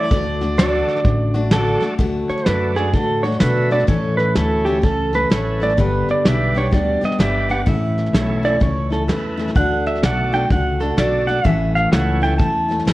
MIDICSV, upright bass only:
0, 0, Header, 1, 3, 480
1, 0, Start_track
1, 0, Key_signature, 2, "major"
1, 0, Tempo, 472441
1, 106, Time_signature, 4, 2, 24, 8
1, 13137, End_track
2, 0, Start_track
2, 0, Title_t, "Upright bass"
2, 0, Program_c, 0, 32
2, 109, Note_on_c, 0, 38, 90
2, 817, Note_off_c, 0, 38, 0
2, 1061, Note_on_c, 0, 33, 90
2, 1772, Note_off_c, 0, 33, 0
2, 2022, Note_on_c, 0, 38, 70
2, 2308, Note_off_c, 0, 38, 0
2, 2512, Note_on_c, 0, 42, 88
2, 2975, Note_off_c, 0, 42, 0
2, 2982, Note_on_c, 0, 45, 80
2, 3451, Note_off_c, 0, 45, 0
2, 3472, Note_on_c, 0, 47, 84
2, 3936, Note_off_c, 0, 47, 0
2, 3942, Note_on_c, 0, 45, 78
2, 4411, Note_off_c, 0, 45, 0
2, 4429, Note_on_c, 0, 38, 101
2, 4895, Note_off_c, 0, 38, 0
2, 4909, Note_on_c, 0, 37, 83
2, 5375, Note_off_c, 0, 37, 0
2, 5391, Note_on_c, 0, 33, 76
2, 5856, Note_off_c, 0, 33, 0
2, 5869, Note_on_c, 0, 31, 78
2, 6153, Note_off_c, 0, 31, 0
2, 6352, Note_on_c, 0, 35, 101
2, 6816, Note_off_c, 0, 35, 0
2, 6834, Note_on_c, 0, 38, 85
2, 7116, Note_off_c, 0, 38, 0
2, 7306, Note_on_c, 0, 31, 83
2, 7774, Note_off_c, 0, 31, 0
2, 7794, Note_on_c, 0, 33, 80
2, 8258, Note_off_c, 0, 33, 0
2, 8263, Note_on_c, 0, 35, 95
2, 8732, Note_off_c, 0, 35, 0
2, 8752, Note_on_c, 0, 37, 76
2, 9217, Note_off_c, 0, 37, 0
2, 9222, Note_on_c, 0, 40, 81
2, 9691, Note_off_c, 0, 40, 0
2, 9710, Note_on_c, 0, 38, 73
2, 10175, Note_off_c, 0, 38, 0
2, 10186, Note_on_c, 0, 35, 93
2, 10653, Note_off_c, 0, 35, 0
2, 10673, Note_on_c, 0, 37, 80
2, 11137, Note_off_c, 0, 37, 0
2, 11144, Note_on_c, 0, 35, 78
2, 11612, Note_off_c, 0, 35, 0
2, 11631, Note_on_c, 0, 33, 82
2, 12096, Note_off_c, 0, 33, 0
2, 12112, Note_on_c, 0, 37, 100
2, 12577, Note_off_c, 0, 37, 0
2, 12599, Note_on_c, 0, 40, 86
2, 13061, Note_off_c, 0, 40, 0
2, 13073, Note_on_c, 0, 42, 88
2, 13137, Note_off_c, 0, 42, 0
2, 13137, End_track
3, 0, Start_track
3, 0, Title_t, "Muted upright bass strokes"
3, 2326, Note_on_c, 9, 29, 38
3, 2428, Note_off_c, 9, 29, 0
3, 6180, Note_on_c, 9, 29, 41
3, 6282, Note_off_c, 9, 29, 0
3, 7135, Note_on_c, 9, 29, 41
3, 7237, Note_off_c, 9, 29, 0
3, 13137, End_track
0, 0, End_of_file